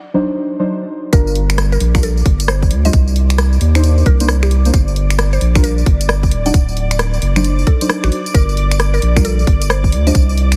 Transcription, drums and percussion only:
1.13 kick, closed hi-hat, tambourine
1.27 tambourine
1.35 open hi-hat
1.50 finger snap, closed hi-hat, tambourine
1.58 cross-stick, closed hi-hat, tambourine
1.72 tambourine
1.80 open hi-hat
1.95 finger snap, kick, tambourine
2.03 closed hi-hat, tambourine
2.17 tambourine
2.26 kick, open hi-hat
2.40 closed hi-hat, tambourine
2.48 cross-stick, tambourine
2.62 kick, tambourine
2.71 open hi-hat
2.85 closed hi-hat, tambourine
2.93 kick, closed hi-hat, tambourine
3.08 tambourine
3.16 open hi-hat
3.30 finger snap, closed hi-hat, tambourine
3.38 cross-stick, closed hi-hat, tambourine
3.53 tambourine
3.61 open hi-hat
3.75 finger snap, tambourine
3.84 closed hi-hat, tambourine
3.98 tambourine
4.06 kick, open hi-hat
4.20 closed hi-hat, tambourine
4.28 cross-stick, tambourine
4.43 finger snap, tambourine
4.51 open hi-hat
4.65 closed hi-hat, tambourine
4.74 kick, closed hi-hat, tambourine
4.88 tambourine
4.96 open hi-hat
5.10 finger snap, closed hi-hat, tambourine
5.19 cross-stick, closed hi-hat, tambourine
5.33 tambourine
5.41 open hi-hat
5.55 finger snap, kick, tambourine
5.64 closed hi-hat, tambourine
5.78 tambourine
5.86 kick, open hi-hat
6.01 closed hi-hat, tambourine
6.09 cross-stick, tambourine
6.23 kick, tambourine
6.31 open hi-hat
6.46 closed hi-hat, tambourine
6.54 kick, closed hi-hat, tambourine
6.69 tambourine
6.77 open hi-hat
6.91 finger snap, closed hi-hat, tambourine
6.99 cross-stick, closed hi-hat, tambourine
7.14 tambourine
7.22 open hi-hat
7.36 finger snap, tambourine
7.44 closed hi-hat, tambourine
7.59 tambourine
7.67 kick, open hi-hat
7.81 closed hi-hat, tambourine
7.89 cross-stick, tambourine
8.04 finger snap, tambourine
8.12 open hi-hat
8.26 closed hi-hat, tambourine
8.34 kick, closed hi-hat, tambourine
8.49 tambourine
8.57 open hi-hat
8.71 finger snap, closed hi-hat, tambourine
8.80 cross-stick, closed hi-hat, tambourine
8.94 tambourine
9.02 open hi-hat
9.16 finger snap, kick, tambourine
9.25 closed hi-hat, tambourine
9.39 tambourine
9.47 kick, open hi-hat
9.62 closed hi-hat, tambourine
9.70 cross-stick, tambourine
9.84 kick, tambourine
9.92 open hi-hat
10.07 closed hi-hat, tambourine
10.15 kick, closed hi-hat, tambourine
10.29 tambourine
10.38 open hi-hat
10.52 finger snap, closed hi-hat, tambourine

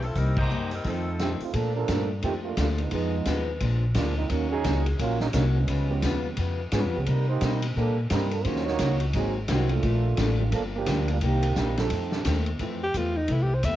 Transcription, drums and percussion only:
0.02 open hi-hat
0.15 kick, open hi-hat
0.36 kick, crash
0.71 open hi-hat
0.84 kick, open hi-hat
1.19 snare, closed hi-hat
1.40 open hi-hat
1.53 kick, ride
1.88 kick, snare, hi-hat pedal, ride
2.22 kick, ride
2.57 kick, snare, hi-hat pedal, ride
2.78 ride
2.91 kick, ride
3.26 kick, snare, hi-hat pedal, ride
3.60 kick, ride
3.95 kick, snare, hi-hat pedal, ride
4.30 kick, ride
4.64 kick, snare, hi-hat pedal, ride
4.86 ride
4.99 kick, ride
5.20 snare
5.33 kick, snare, hi-hat pedal, ride
5.68 kick, ride
6.02 kick, snare, hi-hat pedal, ride
6.37 kick, ride
6.72 kick, snare, hi-hat pedal, ride
7.06 kick, ride
7.41 kick, snare, hi-hat pedal, ride
7.62 ride
7.76 kick
8.10 kick, snare, hi-hat pedal, ride
8.31 ride
8.45 kick, ride
8.56 snare
8.67 snare
8.79 kick, snare, hi-hat pedal, ride
9.00 ride
9.13 kick, ride
9.48 kick, snare, hi-hat pedal, ride
9.69 ride
9.83 kick, ride
10.17 kick, snare, hi-hat pedal, ride
10.52 kick, ride
10.86 kick, snare, hi-hat pedal, ride
11.08 ride
11.21 kick, ride
11.42 ride
11.56 kick, snare, hi-hat pedal
11.77 snare, ride
11.90 kick, ride
12.12 snare
12.25 kick, snare, hi-hat pedal, ride
12.46 ride
12.59 kick, ride
12.94 kick, hi-hat pedal, ride
13.28 kick, ride
13.63 kick, hi-hat pedal, ride

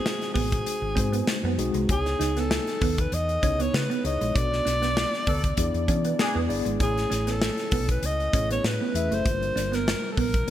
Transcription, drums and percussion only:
0.06 snare
0.21 snare, closed hi-hat
0.35 kick, open hi-hat
0.52 kick, closed hi-hat
0.66 closed hi-hat
0.97 kick, closed hi-hat
1.13 closed hi-hat
1.27 snare
1.59 closed hi-hat
1.74 closed hi-hat
1.89 kick, closed hi-hat
2.06 snare, closed hi-hat
2.21 snare, closed hi-hat
2.37 snare, closed hi-hat
2.51 snare
2.67 snare, closed hi-hat
2.81 kick, open hi-hat
2.98 kick, closed hi-hat
3.12 closed hi-hat
3.29 closed hi-hat
3.43 kick, closed hi-hat
3.60 closed hi-hat
3.74 snare
3.91 closed hi-hat
4.05 closed hi-hat
4.21 closed hi-hat
4.36 kick, closed hi-hat
4.53 snare
4.67 snare, closed hi-hat
4.83 snare, closed hi-hat
4.97 snare
5.14 snare
5.27 kick, open hi-hat
5.44 kick, closed hi-hat
5.57 kick, closed hi-hat
5.74 closed hi-hat
5.88 kick, closed hi-hat
6.05 closed hi-hat
6.19 snare
6.50 open hi-hat
6.66 closed hi-hat
6.80 kick, closed hi-hat
6.98 snare, closed hi-hat
7.11 snare, closed hi-hat
7.27 snare, closed hi-hat
7.42 snare
7.58 snare, closed hi-hat
7.71 kick, open hi-hat
7.89 kick, closed hi-hat
8.03 closed hi-hat
8.20 closed hi-hat
8.33 kick, closed hi-hat
8.51 closed hi-hat
8.64 snare
8.95 closed hi-hat
9.12 closed hi-hat
9.26 kick, closed hi-hat
9.43 closed hi-hat
9.57 snare, closed hi-hat
9.73 snare, closed hi-hat
9.88 snare
10.17 kick, open hi-hat
10.34 kick, closed hi-hat

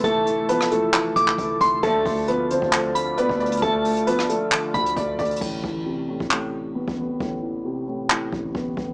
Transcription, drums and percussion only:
0.04 kick, closed hi-hat
0.27 closed hi-hat
0.49 closed hi-hat
0.61 cross-stick
0.71 closed hi-hat
0.94 clap, closed hi-hat
1.16 kick, closed hi-hat
1.28 clap
1.38 kick, closed hi-hat
1.61 kick, closed hi-hat
1.83 kick, closed hi-hat
2.06 kick, open hi-hat
2.28 closed hi-hat
2.50 closed hi-hat
2.62 kick
2.73 clap, closed hi-hat
2.95 closed hi-hat
3.17 closed hi-hat
3.29 kick
3.40 closed hi-hat
3.46 closed hi-hat
3.52 closed hi-hat
3.57 closed hi-hat
3.62 kick, closed hi-hat
3.85 closed hi-hat, open hi-hat
3.96 closed hi-hat
4.07 closed hi-hat
4.19 cross-stick
4.29 closed hi-hat
4.52 clap, closed hi-hat
4.74 kick, closed hi-hat
4.86 closed hi-hat
4.96 kick, closed hi-hat
5.19 kick, closed hi-hat
5.25 closed hi-hat
5.31 closed hi-hat
5.36 closed hi-hat
5.41 kick, crash
5.64 kick
6.20 kick
6.31 clap
6.88 kick
7.20 kick
8.10 clap
8.32 kick
8.55 kick
8.77 kick

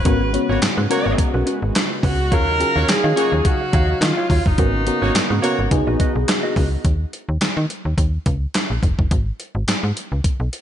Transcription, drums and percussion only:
0.05 kick, closed hi-hat
0.34 closed hi-hat
0.62 snare, clap, closed hi-hat
0.91 closed hi-hat
1.18 kick, closed hi-hat
1.47 closed hi-hat
1.75 snare, clap, closed hi-hat
2.03 kick, open hi-hat
2.32 kick, closed hi-hat
2.61 closed hi-hat
2.88 snare, clap, closed hi-hat
3.17 closed hi-hat
3.45 kick, closed hi-hat
3.73 kick, closed hi-hat
4.02 snare, clap, closed hi-hat
4.30 kick, open hi-hat
4.46 kick
4.58 kick, closed hi-hat
4.87 closed hi-hat
5.15 snare, clap, closed hi-hat
5.44 closed hi-hat
5.71 kick, closed hi-hat
6.00 kick, closed hi-hat
6.28 snare, clap, closed hi-hat
6.56 kick, open hi-hat
6.85 kick, closed hi-hat
7.13 closed hi-hat
7.41 snare, clap, closed hi-hat
7.70 closed hi-hat
7.98 kick, closed hi-hat
8.26 kick, closed hi-hat
8.54 snare, clap, closed hi-hat
8.83 kick, closed hi-hat
8.99 kick
9.11 kick, closed hi-hat
9.40 closed hi-hat
9.68 snare, clap, closed hi-hat
9.97 closed hi-hat
10.24 kick, closed hi-hat
10.53 closed hi-hat

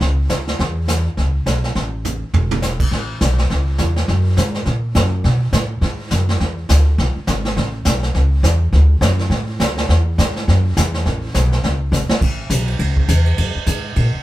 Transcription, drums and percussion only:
0.01 brush sweep, snare
0.30 snare, hi-hat pedal
0.47 snare
0.59 brush sweep, snare
0.88 snare, hi-hat pedal
1.17 brush sweep, snare
1.46 snare, hi-hat pedal
1.64 snare
1.75 brush sweep, snare
2.05 floor tom, hi-hat pedal
2.34 floor tom
2.51 floor tom
2.62 snare, hi-hat pedal
2.80 kick, crash
2.92 brush sweep, snare
3.21 snare, hi-hat pedal
3.38 snare
3.50 brush sweep, snare
3.78 snare, hi-hat pedal
3.96 snare
4.08 brush sweep, snare
4.37 snare, hi-hat pedal
4.54 snare
4.65 brush sweep, snare
4.95 snare, hi-hat pedal
5.24 brush sweep, snare
5.53 snare, hi-hat pedal
5.82 brush sweep, snare
6.11 snare, hi-hat pedal
6.29 snare
6.40 brush sweep, snare
6.69 snare, hi-hat pedal
6.98 brush sweep, snare
7.27 snare, hi-hat pedal
7.45 snare
7.56 brush sweep, snare
7.85 snare, hi-hat pedal
8.03 snare
8.14 brush sweep, snare
8.44 snare, hi-hat pedal
8.73 brush sweep, snare
9.01 snare, hi-hat pedal
9.19 snare
9.31 brush sweep, snare
9.60 snare, hi-hat pedal
9.77 snare
9.89 brush sweep, snare
10.18 snare, hi-hat pedal
10.36 snare
10.48 brush sweep, snare
10.77 snare, hi-hat pedal
10.94 snare
11.06 brush sweep, snare
11.34 snare, hi-hat pedal
11.52 snare
11.63 brush sweep, snare
11.93 snare, hi-hat pedal
12.09 snare
12.21 kick, crash
12.50 hi-hat pedal, ride
12.67 ride
12.79 ride
12.97 kick
13.08 hi-hat pedal, ride
13.26 ride
13.38 ride
13.66 hi-hat pedal, ride
13.96 ride

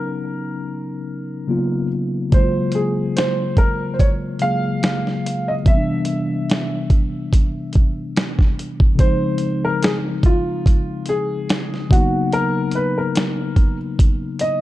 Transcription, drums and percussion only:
2.32 kick, closed hi-hat
2.72 closed hi-hat
3.17 snare, closed hi-hat
3.57 kick, closed hi-hat
3.99 kick, closed hi-hat
4.39 closed hi-hat
4.83 snare, closed hi-hat
5.07 snare
5.26 closed hi-hat
5.66 kick, closed hi-hat
6.05 closed hi-hat
6.50 snare, closed hi-hat
6.90 kick, closed hi-hat
7.33 kick, closed hi-hat
7.73 kick, closed hi-hat
8.16 snare, closed hi-hat
8.39 kick, snare
8.59 closed hi-hat
8.80 kick
8.99 kick, closed hi-hat
9.38 closed hi-hat
9.83 snare, closed hi-hat
10.23 kick, closed hi-hat
10.66 kick, closed hi-hat
11.06 closed hi-hat
11.49 snare, closed hi-hat
11.74 snare
11.91 kick, closed hi-hat
12.33 closed hi-hat
12.71 closed hi-hat
13.15 snare, closed hi-hat
13.56 kick, closed hi-hat
13.99 kick, closed hi-hat
14.39 closed hi-hat

